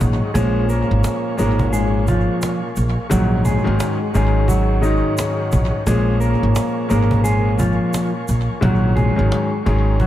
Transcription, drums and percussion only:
0.00 cajon bass medium
0.00 shaker medium
0.35 cajon bass loud
0.35 shaker medium
0.69 shaker soft
1.04 cajon slap loud
1.04 shaker medium
1.39 cajon slap soft
1.39 shaker soft
1.59 cajon bass medium
1.73 shaker medium
1.94 cajon slap soft
2.07 cajon bass loud
2.07 shaker soft
2.42 cajon slap loud
2.42 shaker medium
2.76 cajon slap soft
2.76 shaker medium
3.11 cajon bass loud
3.11 shaker medium
3.45 cajon bass medium
3.45 shaker soft
3.80 cajon slap loud
3.80 shaker medium
4.15 cajon slap soft
4.15 shaker soft
4.48 cajon bass medium
4.48 shaker medium
4.83 shaker soft
5.18 cajon slap loud
5.18 shaker medium
5.39 cajon slap soft
5.52 cajon bass medium
5.52 shaker medium
5.87 cajon bass loud
5.87 shaker medium
6.21 shaker soft
6.55 cajon slap loud
6.55 shaker medium
6.90 shaker soft
7.11 cajon bass loud
7.25 cajon slap soft
7.25 shaker medium
7.46 cajon slap soft
7.59 cajon bass loud
7.59 shaker soft
7.93 cajon slap loud
7.93 shaker medium
8.28 cajon slap soft
8.28 shaker medium
8.62 cajon bass loud
8.97 cajon bass medium
9.32 cajon slap loud
9.66 cajon bass loud
10.00 cajon bass medium

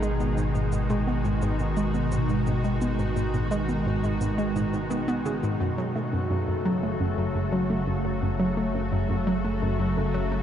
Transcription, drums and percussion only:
0.03 shaker medium
0.20 shaker soft
0.38 shaker medium
0.55 shaker soft
0.72 shaker medium
0.90 high tom soft
0.90 shaker soft
1.25 shaker soft
1.42 shaker medium
1.59 shaker soft
1.77 shaker medium
1.94 shaker soft
2.12 high tom soft
2.12 shaker medium
2.29 shaker soft
2.47 shaker medium
2.64 shaker soft
2.81 shaker medium
2.99 shaker soft
3.17 shaker medium
3.34 high tom soft
3.34 shaker soft
3.51 shaker medium
3.69 shaker soft
4.04 shaker soft
4.21 shaker medium
4.38 shaker soft
4.56 high tom soft
4.56 shaker medium
4.74 shaker soft
4.91 shaker medium
5.08 shaker soft
5.26 shaker medium
5.43 shaker soft

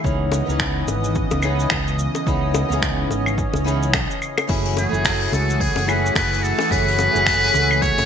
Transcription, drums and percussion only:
0.04 kick loud
0.04 cabasa medium
0.32 high bongo medium
0.32 cabasa medium
0.49 cabasa soft
0.60 finger snap medium
0.60 kick loud
0.60 cabasa medium
0.88 high bongo medium
0.88 cabasa medium
1.04 cabasa soft
1.15 kick loud
1.15 cabasa medium
1.31 high bongo medium
1.31 cabasa soft
1.42 cabasa medium
1.42 claves medium
1.60 cabasa soft
1.70 finger snap loud
1.70 kick loud
1.70 high bongo medium
1.70 cabasa medium
1.88 cabasa soft
1.99 cabasa medium
2.15 high bongo medium
2.15 cabasa medium
2.27 kick loud
2.27 cabasa medium
2.54 high bongo medium
2.54 cabasa medium
2.72 cabasa soft
2.82 finger snap medium
2.82 kick loud
2.82 cabasa soft
3.10 high bongo medium
3.10 cabasa medium
3.26 cabasa medium
3.26 claves medium
3.38 kick loud
3.38 cabasa medium
3.53 high bongo medium
3.53 cabasa soft
3.67 cabasa medium
3.83 cabasa medium
3.94 finger snap loud
3.94 kick loud
3.94 high bongo medium
3.94 cabasa medium
4.11 cabasa soft
4.22 cabasa medium
4.22 claves medium
4.38 high bongo medium
4.38 cabasa soft
4.38 claves medium
4.48 kick medium
4.48 open hi-hat medium
4.48 cabasa medium
4.65 open hi-hat soft
4.77 high bongo medium
4.77 cabasa medium
4.94 cabasa soft
5.04 finger snap medium
5.04 kick loud
5.04 open hi-hat medium
5.04 cabasa medium
5.21 open hi-hat medium
5.33 high bongo medium
5.33 cabasa medium
5.50 cabasa medium
5.60 kick medium
5.60 open hi-hat medium
5.60 cabasa medium
5.76 open hi-hat medium
5.76 high bongo medium
5.76 cabasa soft
5.89 cabasa medium
5.89 claves medium
6.06 cabasa medium
6.15 finger snap medium
6.15 kick loud
6.15 open hi-hat medium
6.15 high bongo medium
6.15 cabasa medium
6.32 open hi-hat medium
6.32 cabasa soft
6.45 cabasa medium
6.59 open hi-hat soft
6.59 high bongo medium
6.59 cabasa soft
6.71 kick medium
6.71 open hi-hat medium
6.71 cabasa medium
6.88 open hi-hat medium
6.99 high bongo medium
6.99 cabasa medium
7.16 cabasa soft
7.27 finger snap medium
7.27 kick loud
7.27 open hi-hat medium
7.27 cabasa medium
7.43 open hi-hat medium
7.54 high bongo medium
7.54 cabasa medium
7.71 cabasa soft
7.71 claves medium
7.82 kick medium
7.82 open hi-hat medium
7.82 cabasa medium
7.98 open hi-hat medium
7.98 high bongo medium
7.98 cabasa soft

